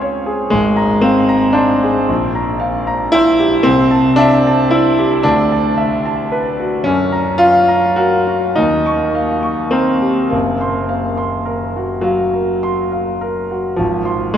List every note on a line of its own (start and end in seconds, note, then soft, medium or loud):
0.00 0.48 C#2 medium
0.00 0.55 C4 medium
0.00 0.55 C#4 medium
0.00 0.26 G#4 soft
0.00 0.55 C#5 medium
0.00 0.55 F5 soft
0.00 0.55 C6 medium
0.26 0.52 G#4 soft
0.50 2.05 G#1 medium
0.50 1.03 G#3 medium
0.76 1.19 A#5 medium
1.01 1.56 C4 medium
1.01 1.46 F5 medium
1.29 1.72 A#5 medium
1.53 3.11 D4 medium
1.53 1.98 C5 medium
1.83 2.09 G#4 medium
2.08 3.61 A#1 medium
2.35 2.77 A#5 soft
2.60 3.02 F5 medium
2.87 3.29 A#5 medium
3.12 3.65 E4 loud
3.12 3.56 C5 medium
3.39 3.66 G4 medium
3.63 5.22 C2 medium
3.63 4.18 C4 loud
3.91 4.34 A5 medium
4.16 4.71 D4 loud
4.16 4.61 E5 medium
4.47 4.89 A5 medium
4.71 5.25 E4 medium
4.71 5.15 D5 soft
4.98 5.26 G4 medium
5.23 6.84 D2 medium
5.23 6.88 D4 loud
5.52 5.96 A5 soft
5.77 6.23 E5 medium
6.06 6.50 A5 soft
6.32 6.77 B4 medium
6.60 6.88 F#4 soft
6.84 8.54 F#2 medium
6.84 7.42 C#4 medium
7.12 7.59 A#5 medium
7.38 7.98 F4 loud
7.38 7.87 F5 medium
7.68 8.17 A#5 medium
7.96 8.26 F#4 medium
7.96 8.46 A#4 soft
8.27 8.58 F#4 soft
8.56 10.29 D#2 medium
8.56 9.72 D#4 medium
8.86 9.32 C#6 soft
9.15 9.62 F5 medium
9.43 9.91 C#6 soft
9.71 10.32 C4 medium
9.71 10.21 A#4 soft
10.01 10.32 G4 soft
10.30 13.76 F#1 medium
10.30 12.05 A#3 medium
10.61 11.08 C6 soft
10.89 11.36 F5 soft
11.17 11.64 C6 soft
11.45 11.93 A#4 soft
11.76 12.24 F#4 soft
12.01 13.78 F#3 medium
12.01 12.53 F5 soft
12.34 12.82 A#4 soft
12.63 13.11 C6 soft
12.92 13.40 F5 soft
13.21 13.68 A#4 soft
13.51 13.80 F#4 soft
13.76 14.37 G#1 medium
13.76 14.35 F3 medium
14.05 14.37 C6 soft
14.34 14.37 G#3 medium